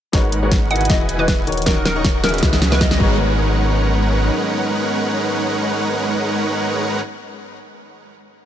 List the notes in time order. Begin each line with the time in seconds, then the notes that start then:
0.12 G#1 C#3 G#3 A#3 B3 D#4 F#4 A#4 B4 C#5 F#5, kick, snare, closed hi-hat, riser
0.32 closed hi-hat
0.42 G#3 D#4 F#4 A#4 B4 C#5 F#5
0.52 kick, snare, closed hi-hat
0.70 G#3 D#4 E4 F#4 A#4 B4 D#5 F#5 G#5, closed hi-hat
0.76 closed hi-hat
0.81 closed hi-hat
0.85 E3, closed hi-hat
0.89 E1 E3 G#3 E4 F#4 G#4 D#5, kick, snare, closed hi-hat
1.00 E4 B4 D#5 F#5 G#5
1.09 closed hi-hat
1.18 E3 E4 F#4 G#4 B4 D#5
1.28 B4, kick, snare, closed hi-hat
1.38 E4 B4 D#5 F#5 G#5
1.46 D#1 D#3 C#4 D#4 F#4 A#4 C#5, closed hi-hat
1.52 closed hi-hat
1.57 closed hi-hat
1.62 D#3 D#4, closed hi-hat
1.66 D#4 F#4 A#4 C#5 D#5 F#5 A#5 C#6, kick, snare, closed hi-hat
1.76 A#4
1.85 A#4, snare, closed hi-hat
1.95 D#3 D#4 F#4 A#4 C#5 D#5 F#5 A#5 C#6
2.04 kick, snare, closed hi-hat
2.23 D#3 C#4 D#4 F#4 G#4 A#4 B4 D#5 E5 F#5, snare, closed hi-hat
2.29 closed hi-hat
2.34 closed hi-hat
2.38 C#3 G#3, closed hi-hat
2.42 C#2 E3 B3 D#4 E4 F#4 B4, kick, snare, closed hi-hat
2.53 C#4 G#4 B4 D#5 E5 F#5, snare
2.62 snare, closed hi-hat
2.71 C#3 G#3 D#4 E4 F#4 B4, snare
2.81 D#5, kick, snare, closed hi-hat
2.91 C#4 G#4 B4 D#5 E5 F#5, snare
2.97 G#1 F#3 G#3 B3 C#4 D#4 F#4 A#4 B4 C#5 F#5 A#5, kick
3.02 B3 C#5